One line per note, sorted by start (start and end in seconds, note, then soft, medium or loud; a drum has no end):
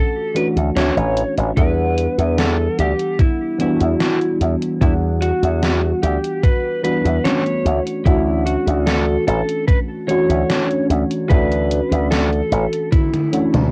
0.00 0.30 E3 medium
0.00 0.30 A3 medium
0.00 0.31 C#4 medium
0.00 0.31 D4 medium
0.00 0.37 A4 medium
0.00 0.32 F#5 medium
0.34 0.71 E3 medium
0.34 0.71 A3 medium
0.34 0.71 C#4 medium
0.34 0.71 D4 medium
0.34 0.72 F#4 medium
0.34 0.47 B4 medium
0.34 closed hi-hat medium
0.56 0.69 D2 medium
0.56 closed hi-hat medium
0.75 0.89 D2 medium
0.75 1.52 E3 medium
0.75 1.52 A3 medium
0.75 1.53 C#4 medium
0.75 1.53 D4 medium
0.75 1.53 F#4 medium
0.75 1.34 C#5 loud
0.75 snare loud
0.75 closed hi-hat medium
0.97 1.22 A1 medium
0.97 closed hi-hat soft
1.17 closed hi-hat medium
1.37 1.50 A1 medium
1.37 closed hi-hat soft
1.56 2.06 E2 medium
1.56 3.55 E3 medium
1.56 3.55 G3 medium
1.56 3.55 B3 medium
1.56 3.56 D4 medium
1.56 2.41 B4 loud
1.56 3.56 F#5 medium
1.56 kick loud
1.56 closed hi-hat medium
1.98 closed hi-hat medium
2.18 2.67 E2 medium
2.18 closed hi-hat soft
2.38 2.80 A4 medium
2.38 snare loud
2.38 closed hi-hat medium
2.79 2.92 D2 medium
2.79 3.21 G4 medium
2.79 closed hi-hat medium
2.99 closed hi-hat soft
3.19 3.58 E4 medium
3.19 kick loud
3.19 closed hi-hat medium
3.58 4.76 E3 loud
3.58 4.77 G3 medium
3.58 4.77 B3 medium
3.58 4.77 D4 medium
3.58 4.38 E4 medium
3.58 4.78 F#4 loud
3.58 closed hi-hat medium
3.81 3.93 E2 medium
3.81 closed hi-hat medium
4.00 snare loud
4.00 closed hi-hat medium
4.21 closed hi-hat soft
4.41 4.54 E2 medium
4.41 closed hi-hat medium
4.62 closed hi-hat soft
4.80 5.30 E2 loud
4.80 6.79 E3 medium
4.80 6.79 G3 medium
4.80 6.80 B3 medium
4.80 6.80 D4 medium
4.80 4.93 E4 medium
4.80 6.80 F#5 medium
4.80 kick loud
4.80 closed hi-hat medium
5.22 6.02 F#4 medium
5.22 closed hi-hat medium
5.43 5.91 E2 medium
5.43 closed hi-hat soft
5.63 snare loud
5.63 closed hi-hat medium
6.03 6.16 D2 medium
6.03 6.45 G4 medium
6.03 closed hi-hat medium
6.24 closed hi-hat soft
6.43 6.81 B4 loud
6.43 kick loud
6.43 closed hi-hat medium
6.83 7.20 E3 medium
6.83 7.20 G3 medium
6.83 7.20 B3 medium
6.83 7.20 D4 medium
6.83 7.20 F#4 loud
6.83 7.26 B4 medium
6.83 closed hi-hat medium
7.05 7.17 E2 medium
7.05 closed hi-hat medium
7.24 8.01 E3 medium
7.24 8.01 A3 medium
7.24 8.01 C#4 medium
7.24 8.01 D4 medium
7.24 8.02 F#4 medium
7.24 7.82 C#5 loud
7.24 snare loud
7.24 closed hi-hat medium
7.46 closed hi-hat soft
7.65 7.79 D2 medium
7.65 closed hi-hat medium
7.87 closed hi-hat soft
8.04 8.55 D2 loud
8.04 10.03 E3 medium
8.04 10.04 A3 medium
8.04 10.04 C#4 medium
8.04 10.04 D4 medium
8.04 8.43 E4 loud
8.04 10.05 F#4 medium
8.04 kick loud
8.04 closed hi-hat medium
8.46 8.88 F#4 medium
8.46 closed hi-hat medium
8.67 9.16 D2 medium
8.67 closed hi-hat soft
8.86 9.24 A4 medium
8.86 snare loud
8.86 closed hi-hat medium
9.27 9.41 A1 medium
9.27 9.67 A4 medium
9.27 closed hi-hat medium
9.49 closed hi-hat soft
9.68 9.79 B4 loud
9.68 kick loud
9.68 closed hi-hat medium
10.07 11.25 E3 loud
10.07 11.25 A3 medium
10.07 11.26 C#4 medium
10.07 11.26 D4 medium
10.07 11.27 F#4 loud
10.07 10.86 C#5 medium
10.07 closed hi-hat medium
10.29 10.42 D2 medium
10.29 closed hi-hat medium
10.50 snare loud
10.50 closed hi-hat medium
10.71 closed hi-hat soft
10.90 11.03 D2 medium
10.90 closed hi-hat medium
11.11 closed hi-hat medium
11.29 11.79 D2 loud
11.29 13.28 E3 medium
11.29 13.28 A3 medium
11.29 13.28 C#4 medium
11.29 13.29 D4 medium
11.29 13.29 F#4 medium
11.29 12.07 B4 loud
11.29 kick loud
11.29 closed hi-hat medium
11.52 closed hi-hat soft
11.71 closed hi-hat medium
11.91 12.40 D2 loud
11.91 closed hi-hat medium
12.11 12.88 A4 medium
12.11 snare loud
12.11 closed hi-hat medium
12.33 closed hi-hat soft
12.52 12.65 A1 medium
12.52 closed hi-hat medium
12.73 closed hi-hat medium
12.92 13.69 E4 medium
12.92 kick loud
12.92 closed hi-hat medium
12.92 high tom medium
13.14 closed hi-hat soft
13.14 high tom medium
13.32 13.68 E3 medium
13.32 13.69 A3 medium
13.32 13.69 C#4 medium
13.32 13.69 D4 medium
13.32 13.69 F#4 medium
13.32 closed hi-hat medium
13.54 13.71 D2 medium
13.54 closed hi-hat medium
13.54 mid tom medium